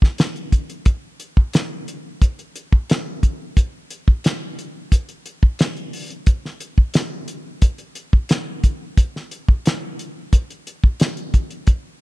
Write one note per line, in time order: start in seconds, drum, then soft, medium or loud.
0.02 kick medium
0.02 snare soft
0.18 snare loud
0.18 closed hi-hat medium
0.36 closed hi-hat soft
0.52 kick medium
0.52 closed hi-hat medium
0.70 closed hi-hat soft
0.85 kick loud
0.85 closed hi-hat medium
1.20 closed hi-hat medium
1.37 kick medium
1.53 snare loud
1.53 closed hi-hat medium
1.88 closed hi-hat medium
2.22 kick medium
2.22 closed hi-hat medium
2.39 closed hi-hat soft
2.56 closed hi-hat medium
2.73 kick medium
2.90 snare loud
2.90 closed hi-hat medium
3.23 kick medium
3.23 closed hi-hat medium
3.57 kick loud
3.57 closed hi-hat medium
3.90 closed hi-hat medium
4.08 kick medium
4.24 snare medium
4.24 closed hi-hat medium
4.59 closed hi-hat medium
4.92 kick medium
4.92 closed hi-hat medium
5.09 closed hi-hat soft
5.26 closed hi-hat medium
5.43 kick medium
5.59 snare loud
5.59 closed hi-hat medium
5.77 closed hi-hat soft
5.93 open hi-hat medium
6.10 closed hi-hat soft
6.26 kick medium
6.26 closed hi-hat medium
6.45 snare soft
6.60 closed hi-hat medium
6.78 kick medium
6.94 snare loud
6.94 closed hi-hat medium
7.28 closed hi-hat medium
7.62 kick medium
7.62 closed hi-hat medium
7.78 closed hi-hat soft
7.95 closed hi-hat medium
8.13 kick medium
8.29 snare loud
8.29 closed hi-hat medium
8.64 kick medium
8.64 closed hi-hat medium
8.97 kick loud
8.97 closed hi-hat medium
9.16 snare soft
9.31 closed hi-hat medium
9.48 kick medium
9.66 snare loud
9.66 closed hi-hat medium
9.99 closed hi-hat medium
10.33 kick medium
10.33 closed hi-hat medium
10.50 closed hi-hat soft
10.67 closed hi-hat medium
10.84 kick medium
11.00 snare loud
11.00 closed hi-hat medium
11.17 closed hi-hat soft
11.34 kick medium
11.34 closed hi-hat medium
11.51 closed hi-hat soft
11.67 kick medium
11.67 closed hi-hat medium